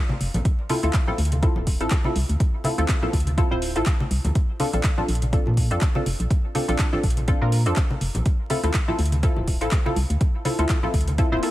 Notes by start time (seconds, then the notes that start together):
0.09 high conga
0.21 F1, open hi-hat
0.34 A#1, closed hi-hat, low conga
0.45 kick, closed hi-hat
0.69 C4 E4 F4 A4, open hi-hat, high conga
0.83 D2 C4 E4 F4 A4, closed hi-hat
0.93 kick, clap, closed hi-hat
1.07 C4 E4 F4 A4, low conga
1.18 D2, open hi-hat
1.25 closed hi-hat
1.32 closed hi-hat, high conga
1.42 C4 E4 F4 A4, kick, closed hi-hat
1.56 D1, low conga
1.67 kick, open hi-hat
1.81 A1 C4 E4 F4 A4, closed hi-hat
1.91 kick, clap, closed hi-hat
2.04 C4 E4 F4 A4, high conga
2.16 C2, open hi-hat
2.29 D2, closed hi-hat
2.40 kick, closed hi-hat
2.64 C4 E4 F4 A4, open hi-hat, high conga
2.78 D2 C4 E4 F4 A4, closed hi-hat
2.88 kick, clap, closed hi-hat
3.02 C4 E4 F4 A4, low conga
3.13 D2, kick, open hi-hat
3.20 closed hi-hat
3.27 closed hi-hat, high conga
3.37 C4 E4 F4 A4, kick, closed hi-hat
3.51 D1 C4 E4 F4 C5
3.62 open hi-hat
3.76 A1 C4 E4 F4 A4, closed hi-hat
3.86 kick, clap, closed hi-hat
4.00 high conga
4.11 C2, open hi-hat
4.24 D2, closed hi-hat, low conga
4.35 kick, closed hi-hat
4.59 C4 D4 F4 A4, open hi-hat, high conga
4.73 A#1 C4 D4 F4 A4, closed hi-hat
4.83 kick, clap, closed hi-hat
4.98 C4 D4 F4 A4, low conga
5.08 A#1, open hi-hat
5.15 closed hi-hat
5.22 closed hi-hat, high conga
5.33 C4 D4 F4 A4, kick, closed hi-hat
5.47 A#2, low conga
5.57 kick, open hi-hat
5.71 F2 C4 D4 F4 A4, closed hi-hat
5.81 kick, clap, closed hi-hat
5.95 C4 D4 F4 A4, high conga
6.06 F1, open hi-hat
6.20 A#1, closed hi-hat
6.30 kick, closed hi-hat
6.55 C4 D4 F4 A4, open hi-hat, high conga
6.68 A#1 C4 D4 F4 A4, closed hi-hat
6.79 kick, clap, closed hi-hat
6.93 C4 D4 F4 A4, low conga
7.04 A#1, kick, open hi-hat
7.10 closed hi-hat
7.17 closed hi-hat, high conga
7.28 C4 D4 F4 A4, kick, closed hi-hat
7.41 A#2 C4 D4 F4 A#4
7.52 open hi-hat
7.66 F2 C4 D4 F4 A4, closed hi-hat
7.76 kick, clap, closed hi-hat
7.90 high conga
8.01 F1, open hi-hat
8.14 A#1, closed hi-hat, low conga
8.26 kick, closed hi-hat
8.50 C4 E4 F4 A4, open hi-hat, high conga
8.63 D2 C4 E4 F4 A4, closed hi-hat
8.74 kick, clap, closed hi-hat
8.88 C4 E4 F4 A4, low conga
8.99 D2, open hi-hat
9.06 closed hi-hat
9.12 closed hi-hat, high conga
9.23 C4 E4 F4 A4, kick, closed hi-hat
9.36 D1, low conga
9.47 kick, open hi-hat
9.61 A1 C4 E4 F4 A4, closed hi-hat
9.71 kick, clap, closed hi-hat
9.86 C4 E4 F4 A4, high conga
9.96 C2, open hi-hat
10.10 D2, closed hi-hat
10.21 kick, closed hi-hat
10.45 C4 E4 F4 A4, open hi-hat, high conga
10.59 D2 C4 E4 F4 A4, closed hi-hat
10.69 kick, clap, closed hi-hat
10.83 C4 E4 F4 A4, low conga
10.94 D2, kick, open hi-hat
11.01 closed hi-hat
11.08 closed hi-hat, high conga
11.18 C4 E4 F4 A4, kick, closed hi-hat, swell
11.32 D1 C4 E4 F4 C5
11.43 C4 E4 F4 A4, open hi-hat